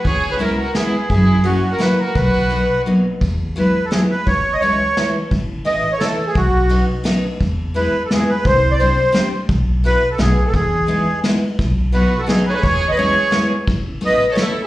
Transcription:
<<
  \new Staff \with { instrumentName = "Accordion" } { \time 3/4 \key b \major \tempo 4 = 172 cis''8. b'16 ais'8 ais'8 gis'4 | gis'4 fis'8. ais'16 b'8 ais'8 | b'2 r4 | \key e \major r4 b'8. a'16 gis'8 b'8 |
cis''8. dis''16 cis''4. r8 | r4 dis''8. cis''16 a'8. gis'16 | fis'4. r4. | r4 b'8. a'16 gis'8 b'8 |
c''8. d''16 c''4. r8 | r4 b'8. a'16 gis'8. a'16 | gis'2 r4 | r4 b'8. a'16 gis'8 b'32 cis''32 b'16 |
cis''8. dis''16 cis''4. r8 | r4 dis''8. cis''16 a'8. r16 | }
  \new Staff \with { instrumentName = "Violin" } { \time 3/4 \key b \major gis'8. gis'16 e'8 fis'8 e'4 | e'4 cis'8. fis'16 fis'8 fis'8 | fis'2 r4 | \key e \major r2. |
r2. | r2. | r2. | r2. |
r2. | r2. | r2. | r4 fis'8. fis'16 dis'8 gis'32 a'32 gis'16 |
gis'8. b'16 gis'4. r8 | r4 b'8. a'16 e'8. e'16 | }
  \new Staff \with { instrumentName = "Steel-string acoustic guitar" } { \time 3/4 \key b \major r4 <gis b cis' e'>8 r8 <gis b cis' e'>8 r8 | r4 <fis ais cis' e'>8 r8 <fis ais cis' e'>8 r8 | r4 <fis ais b dis'>8 r8 <fis ais b dis'>8 r8 | \key e \major r4 <fis gis b e'>8 r8 <fis gis b e'>8 r8 |
r4 <e gis cis' e'>8 r8 <e gis cis' e'>8 r8 | r4 <e a cis' e'>8 r8 <e a cis' e'>8 r8 | r4 <fis b cis' dis'>8 r8 <fis b cis' dis'>8 r8 | r4 <gis b e' gis'>8 r8 <gis b e' gis'>8 r8 |
r4 <g c' d' g'>8 r8 <g c' d' g'>8 r8 | r4 <a b e' fis'>8 r8 <a b dis' fis'>8 r8 | r4 <gis b dis' e'>8 r8 <gis b dis' e'>8 r8 | r4 <fis b dis' fis'>8 r8 <fis b dis' fis'>8 r8 |
r4 <gis b cis' e'>8 r8 <gis b cis' e'>8 r8 | r4 <a b cis' e'>8 r8 <a b cis' e'>8 r8 | }
  \new Staff \with { instrumentName = "Upright bass" } { \clef bass \time 3/4 \key b \major cis,2 r4 | fis,2 r4 | b,,2 r4 | \key e \major e,2 r4 |
cis,2 r4 | a,,2 r4 | b,,2 r4 | e,2 r4 |
c,2 r4 | b,,2 b,,4 | e,2 r4 | b,,2 r4 |
e,2 r4 | a,,2 r4 | }
  \new DrumStaff \with { instrumentName = "Drums" } \drummode { \time 3/4 <bd cymr>8 cymr8 cymr4 <cymr sn>4 | <bd cymr>4 cymr4 <cymr sn>4 | <bd cymr>8 cymr8 cymr4 r4 | <bd cymr>4 cymr4 <cymr sn>4 |
<bd cymr>4 cymr4 <cymr sn>4 | <bd cymr>4 cymr4 <cymr sn>4 | <bd cymr>4 cymr4 <cymr sn>4 | <bd cymr>4 cymr4 <cymr sn>4 |
<bd cymr>4 cymr4 <cymr sn>4 | <bd cymr>4 cymr4 <cymr sn>4 | <bd cymr>4 cymr4 <cymr sn>4 | <bd cymr>4 cymr4 <cymr sn>4 |
<bd cymr>4 cymr4 <cymr sn>4 | <bd cymr>4 cymr4 <cymr sn>4 | }
>>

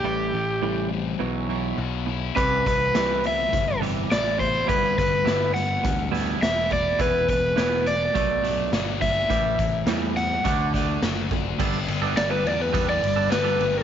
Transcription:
<<
  \new Staff \with { instrumentName = "Overdriven electric guitar" } { \time 4/4 \key g \major \tempo 4 = 104 g'4. r2 r8 | b'8 b'4 e''4 r8 d''8 c''8 | b'8 b'4 fis''4 r8 e''8 d''8 | b'8 b'4 d''2 e''8~ |
e''4. fis''2 r8 | r4 d''16 b'16 d''16 b'8 d''8. b'4 | }
  \new Staff \with { instrumentName = "Distorted electric guitar" } { \time 4/4 \key g \major a,8 e8 g8 c'8 b,8 e'8 fis'8 e'8 | c8 e8 g8 b8 e8 b8 e'8 b8 | g,8 d8 g8 b8 e8 b8 e'8 b8 | e,8 b,8 b8 e'8 b,8 d'8 fis'8 d'8 |
a,8 e8 g8 c'8 d8 d'8 fis'8 d'8 | <g, d g b d' g'>8 <g b d' g'>8 <g, d g b d' g'>16 <g b d' g'>16 <g b d' g'>16 <g b d' g'>8 <g b d' g'>8. <g, d g b d' g'>16 <g b d' g'>16 <g b d' g'>16 <g b d' g'>16 | }
  \new Staff \with { instrumentName = "Clean electric guitar" } { \clef bass \time 4/4 \key g \major <a, e g>8 <a, e>8 <a, e g>8 <a, e>8 <b, e fis>8 <b, e fis>8 <b, e>8 <b, e>8 | <c e g>8 <c e>8 <c e g>8 <c e>8 <c e>8 <c e g>8 <c e>8 <c e>8 | <g b e'>8 <g b>8 <g b e'>8 <g b>8 <g b>8 <g b e'>8 <g b>8 <g b>8 | <e b e'>8 <e b>8 <e b e'>8 <e b>8 <b, fis a>8 <b, fis a>8 <b, fis>8 <b, fis>8 |
<a, e g>8 <a, e>8 <a, e g>8 <a, e>8 <d a d'>8 <d a d'>8 <d a>8 <d a>8 | <g b d' a'>16 r8 <g b d' a'>16 r16 <g b d' a'>16 r8 <g b d' a'>16 r8 <g b d' a'>16 r16 <g b d' a'>16 r8 | }
  \new Staff \with { instrumentName = "Picked electric bass" } { \clef bass \time 4/4 \key g \major a,,8 a,,8 a,,4 b,,4 b,,4 | c,8 c,8 c,4 g,,4 a,,4 | g,,8 g,,8 g,,4 d,4 e,,4 | e,,8 e,,8 e,,4 b,,4 g,,4 |
a,,8 a,,8 e,4 d,4 fis,,4 | g,,8 g,,8 g,,8 e,8 e,8 g,,8 g,,8 g,,8 | }
  \new DrumStaff \with { instrumentName = "Drums" } \drummode { \time 4/4 r4 r4 r4 r4 | <hh bd>8 <hh bd>8 <hh sn>8 hh8 <hh bd>8 hh8 <hh sn>8 <hh bd>8 | <hh bd>8 <hh bd sn>8 <hh sn>8 hh8 <hh bd>8 <hh sn>8 <hh sn>8 <hh bd>8 | <hh bd>8 <hh bd>8 <hh sn>8 hh8 <hh bd>8 hh8 <hh sn>8 <hh bd>8 |
<hh bd>8 <hh bd>8 <hh sn>8 hh8 <hh bd>8 <hh bd sn>8 <hh sn>8 <hh bd>8 | <cymc bd>8 cymr8 <cymr sn>8 cymr8 <bd cymr>8 cymr8 <cymr sn>8 cymr8 | }
>>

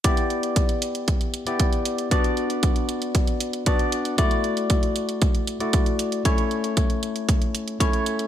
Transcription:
<<
  \new Staff \with { instrumentName = "Tine electric piano" } { \time 4/4 \key e \dorian \tempo 4 = 116 <b e' g' d''>2~ <b e' g' d''>8. <b e' g' d''>4~ <b e' g' d''>16 | <b d' fis' d''>2. <b d' fis' d''>4 | <a e' fis' d''>2~ <a e' fis' d''>8. <a e' fis' d''>4~ <a e' fis' d''>16 | <a cis' e' cis''>2. <a cis' e' cis''>4 | }
  \new DrumStaff \with { instrumentName = "Drums" } \drummode { \time 4/4 <hh bd>16 hh16 hh16 hh16 <hh bd>16 hh16 hh16 hh16 <hh bd>16 hh16 hh16 hh16 <hh bd>16 hh16 hh16 hh16 | <hh bd>16 hh16 hh16 hh16 <hh bd>16 hh16 hh16 hh16 <hh bd>16 hh16 hh16 hh16 <hh bd>16 hh16 hh16 hh16 | <hh bd>16 hh16 hh16 hh16 <hh bd>16 hh16 hh16 hh16 <hh bd>16 hh16 hh16 hh16 <hh bd>16 hh16 hh16 hh16 | <hh bd>16 hh16 hh16 hh16 <hh bd>16 hh16 hh16 hh16 <hh bd>16 hh16 hh16 hh16 <hh bd>16 hh16 hh16 hh16 | }
>>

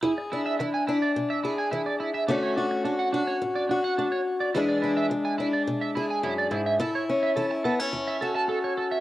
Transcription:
<<
  \new Staff \with { instrumentName = "Clean electric guitar" } { \time 4/4 \key e \mixolydian \tempo 4 = 106 e'16 r16 e'16 e''16 e'16 gis''16 e'16 d''16 r16 e''16 e'16 gis''16 e'16 d''16 e'16 e''16 | d'16 cis''16 d'16 r16 d'16 fis''16 d'16 cis''16 r16 d''16 d'16 fis''16 d'16 cis''16 r16 d''16 | e'16 d''16 e'16 e''16 r16 gis''16 e'16 d''16 r16 e''16 e'16 gis''16 e'16 d''16 e'16 e''16 | a'16 cis''16 r16 e''16 a'16 r16 a'16 cis''16 r16 e''16 a'16 a''16 a'16 cis''16 a'16 e''16 | }
  \new Staff \with { instrumentName = "Steel-string acoustic guitar" } { \time 4/4 \key e \mixolydian << { gis'8 d'4 d'4 gis'4. | <a cis' fis'>8 fis'8 fis'8 fis'4 fis'4. | <e gis d' gis'>8 d'4 d'4 gis'4. | e'8 cis'8 e'8 b16 cis'8. fis'4. | } \\ { e,4 e4 b,4 e4 | d4 r4 a,4 a4 | e,4 e4 b,4 fis,8 gis,8 | a,4 e4 e,4 r4 | } >> }
>>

